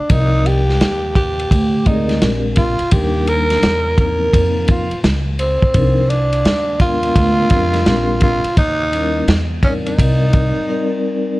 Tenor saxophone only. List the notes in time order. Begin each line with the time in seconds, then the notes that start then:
Already playing: D4
0.12 D#4
0.47 G4
1.16 G4
1.87 D#4
2.58 F4
2.92 G4
3.29 A#4
4.00 A#4
4.70 F4
5.40 C4
6.10 D4
6.81 F4
8.23 F4
8.58 D#4
9.64 C#4
9.87 D#4